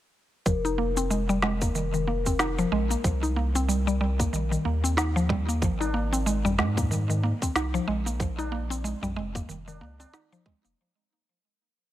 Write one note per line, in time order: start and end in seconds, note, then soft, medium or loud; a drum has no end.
0.46 2.65 F1 medium
0.46 0.63 F3 medium
0.46 10.80 A#4 medium
0.46 kick loud
0.46 cabasa medium
0.65 0.78 D#4 medium
0.65 cabasa soft
0.78 0.95 A#3 medium
0.97 1.10 C4 medium
0.97 cabasa medium
1.10 1.27 G#3 medium
1.10 cabasa soft
1.29 1.37 G3 loud
1.29 cabasa soft
1.42 1.60 G#3 loud
1.42 snare medium
1.62 1.74 A#3 medium
1.62 kick medium
1.62 cabasa medium
1.75 1.92 D#3 medium
1.75 cabasa medium
1.94 2.07 D#3 medium
1.94 cabasa soft
2.08 2.24 A#3 medium
2.26 2.39 C4 medium
2.26 kick medium
2.26 cabasa medium
2.39 2.57 D#4 loud
2.39 snare medium
2.39 cabasa medium
2.59 2.71 F3 loud
2.59 cabasa soft
2.72 2.96 A#1 loud
2.72 2.89 G#3 loud
2.90 3.03 A#3 medium
2.90 cabasa medium
3.04 4.27 C2 loud
3.04 3.21 F3 medium
3.04 kick loud
3.04 cabasa medium
3.23 3.36 D#4 medium
3.23 cabasa soft
3.36 3.53 A#3 medium
3.55 3.68 C4 medium
3.55 cabasa medium
3.69 3.85 G3 medium
3.69 cabasa medium
3.87 3.95 G3 loud
3.87 cabasa soft
4.01 4.18 G3 medium
4.19 4.32 A#3 medium
4.19 kick medium
4.19 cabasa medium
4.33 4.57 A#1 medium
4.33 4.50 D#3 medium
4.33 cabasa medium
4.51 4.64 D#3 medium
4.51 cabasa soft
4.65 5.64 D#2 medium
4.65 4.82 A#3 medium
4.84 4.97 C4 medium
4.84 cabasa medium
4.97 5.15 D#4 loud
4.97 snare medium
4.97 cabasa medium
5.16 5.28 F3 loud
5.16 cabasa soft
5.29 5.46 G3 loud
5.29 kick medium
5.49 5.61 A#3 medium
5.49 cabasa medium
5.62 6.60 G#1 medium
5.62 5.79 F3 medium
5.62 kick loud
5.62 cabasa medium
5.80 5.94 D#4 medium
5.80 tabla na medium
5.80 cabasa soft
5.94 6.11 A#3 medium
6.12 6.26 C4 medium
6.12 tabla tin medium
6.12 cabasa medium
6.26 6.43 G#3 medium
6.26 cabasa medium
6.45 6.53 G3 loud
6.45 tabla ge medium
6.45 cabasa soft
6.58 7.33 G#2 medium
6.58 6.75 G#3 medium
6.58 snare medium
6.58 tabla na soft
6.58 tabla tin medium
6.77 6.90 A#3 medium
6.77 kick loud
6.77 tabla ge medium
6.77 cabasa medium
6.91 7.08 D#3 medium
6.91 cabasa medium
7.09 7.23 D#3 medium
7.09 tabla tin medium
7.09 cabasa soft
7.23 7.40 A#3 medium
7.42 7.55 C4 medium
7.42 kick medium
7.42 cabasa medium
7.55 7.79 C2 medium
7.55 7.73 D#4 loud
7.55 snare medium
7.55 cabasa medium
7.74 7.86 F3 loud
7.74 tabla tin soft
7.74 cabasa soft
7.88 8.94 A#1 medium
7.88 8.05 G#3 loud
8.06 8.19 A#3 medium
8.06 cabasa medium
8.20 8.37 F3 medium
8.20 kick loud
8.20 cabasa medium
8.38 8.52 D#4 medium
8.38 tabla na medium
8.38 cabasa soft
8.52 8.69 A#3 medium
8.70 8.84 C4 medium
8.70 tabla tin medium
8.70 cabasa medium
8.84 9.01 G#3 medium
8.84 cabasa medium
9.02 9.19 A#1 medium
9.02 9.11 G3 loud
9.02 tabla ge loud
9.02 cabasa soft
9.16 9.41 F1 loud
9.16 9.33 G#3 loud
9.16 tabla tin soft
9.35 9.48 A#3 medium
9.35 kick loud
9.35 tabla ge medium
9.35 cabasa medium
9.49 9.81 F1 medium
9.49 9.66 D#3 medium
9.49 cabasa medium
9.67 9.81 D#3 medium
9.67 tabla na medium
9.67 tabla tin medium
9.67 cabasa soft
9.81 10.05 C#2 medium
9.81 9.98 A#3 medium
9.81 tabla na medium
10.00 10.13 C4 medium
10.00 tabla na medium
10.00 cabasa medium
10.13 10.31 D#4 loud
10.13 snare medium
10.13 cabasa medium
10.32 10.45 F3 loud
10.32 tabla tin soft
10.32 cabasa soft
10.46 10.63 G#3 loud
10.46 kick loud
10.64 10.74 F1 medium
10.64 10.77 A#3 medium
10.64 tabla tin soft
10.64 cabasa medium